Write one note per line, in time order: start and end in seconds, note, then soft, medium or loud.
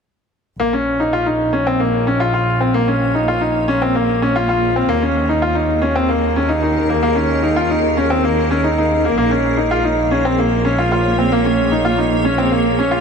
0.60 4.86 A#1 medium
0.60 0.72 A#3 medium
0.60 4.85 A#3 medium
0.60 13.01 G#4 medium
0.60 4.85 C#5 medium
0.73 0.97 C#4 medium
1.00 1.12 D#4 medium
1.13 1.25 F4 medium
1.26 1.50 D#4 medium
1.53 1.65 C#4 medium
1.67 1.79 C4 medium
1.80 2.04 A#3 medium
2.07 2.19 C#4 medium
2.20 2.32 F4 medium
2.34 2.58 F4 medium
2.60 2.73 C4 medium
2.74 2.86 A#3 medium
2.88 3.12 C#4 medium
3.15 3.27 D#4 medium
3.28 3.40 F4 medium
3.41 3.65 D#4 medium
3.68 3.80 C#4 medium
3.82 3.94 C4 medium
3.95 4.19 A#3 medium
4.22 4.34 C#4 medium
4.36 4.47 F4 medium
4.49 4.72 F4 medium
4.76 4.88 C4 medium
4.88 9.14 D#2 medium
4.88 5.01 A#3 medium
4.88 9.13 D#4 medium
4.88 9.13 A#4 medium
5.02 5.26 C#4 medium
5.29 5.41 D#4 medium
5.42 5.54 F4 medium
5.55 5.79 D#4 medium
5.82 5.94 C#4 medium
5.95 6.08 C4 medium
6.09 6.33 A#3 medium
6.36 6.48 C#4 medium
6.49 6.61 D#4 medium
6.63 6.86 D#4 medium
6.89 7.01 A#3 medium
7.03 7.15 A#3 medium
7.15 7.40 C#4 medium
7.43 7.55 D#4 medium
7.56 7.68 F4 medium
7.70 7.94 D#4 medium
7.97 8.09 C#4 medium
8.10 8.22 C4 medium
8.24 8.47 A#3 medium
8.51 8.62 C#4 medium
8.64 8.76 D#4 medium
8.78 9.01 D#4 medium
9.05 9.16 A#3 medium
9.17 13.01 A#1 medium
9.17 9.29 A#3 medium
9.17 13.01 A#3 medium
9.17 13.01 C#5 medium
9.31 9.55 C#4 medium
9.57 9.69 D#4 medium
9.71 9.83 F4 medium
9.84 10.08 D#4 medium
10.11 10.23 C#4 medium
10.25 10.37 C4 medium
10.38 10.62 A#3 medium
10.65 10.77 C#4 medium
10.78 10.90 F4 medium
10.92 11.15 F4 medium
11.18 11.30 C4 medium
11.32 11.44 A#3 medium
11.45 11.69 C#4 medium
11.71 11.84 D#4 medium
11.85 11.97 F4 medium
11.98 12.22 D#4 medium
12.25 12.37 C#4 medium
12.38 12.50 C4 medium
12.51 12.75 A#3 medium
12.79 12.91 C#4 medium
12.91 13.01 F4 medium